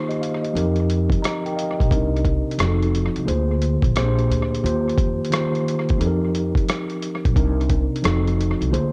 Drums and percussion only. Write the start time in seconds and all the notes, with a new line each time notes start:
0.10 closed hi-hat
0.23 closed hi-hat
0.44 closed hi-hat
0.57 closed hi-hat
0.76 closed hi-hat
0.90 closed hi-hat
1.10 kick, closed hi-hat
1.24 cross-stick, closed hi-hat
1.46 closed hi-hat
1.59 closed hi-hat
1.80 kick, closed hi-hat
1.91 kick, closed hi-hat
2.17 closed hi-hat
2.25 kick, closed hi-hat
2.51 closed hi-hat
2.59 cross-stick, closed hi-hat
2.83 closed hi-hat
2.95 closed hi-hat
3.16 closed hi-hat
3.28 closed hi-hat
3.62 closed hi-hat
3.82 kick, closed hi-hat
3.96 cross-stick, closed hi-hat
4.19 closed hi-hat
4.31 closed hi-hat
4.54 closed hi-hat
4.66 closed hi-hat
4.89 closed hi-hat
4.98 kick, closed hi-hat
5.25 closed hi-hat
5.32 cross-stick, closed hi-hat
5.55 closed hi-hat
5.68 closed hi-hat
5.89 kick, closed hi-hat
6.01 closed hi-hat
6.35 closed hi-hat
6.55 kick, closed hi-hat
6.69 cross-stick, closed hi-hat
6.90 closed hi-hat
7.03 closed hi-hat
7.25 kick, closed hi-hat
7.36 kick, closed hi-hat
7.61 closed hi-hat
7.70 kick, closed hi-hat
7.96 closed hi-hat
8.04 cross-stick, closed hi-hat
8.28 closed hi-hat
8.41 closed hi-hat
8.62 closed hi-hat
8.74 closed hi-hat